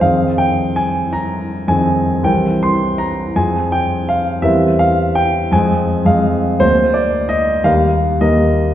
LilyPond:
<<
  \new Staff \with { instrumentName = "Grand piano" } { \time 4/4 \key f \dorian \tempo 4 = 110 \tuplet 3/2 { f''4 g''8~ g''8 aes''4 } bes''4 aes''4 | \tuplet 3/2 { g''4 c'''8~ c'''8 bes''4 aes''4 g''8~ g''8 f''4 } | \tuplet 3/2 { e''4 f''8~ f''8 g''4 } aes''4 f''4 | \tuplet 3/2 { c''4 d''8~ d''8 ees''4 } f''4 ees''4 | }
  \new Staff \with { instrumentName = "Grand piano" } { \time 4/4 \key f \dorian <f, ees c' aes'>2. <f, ees c' aes'>4 | <c, e c' bes'>2 <f, f c' aes'>2 | <e, g c' bes'>2 <f, aes c' aes'>4 <f, aes c' aes'>4 | <d, aes bes bes'>2 <ees, g bes bes'>4 <ees, g bes bes'>4 | }
>>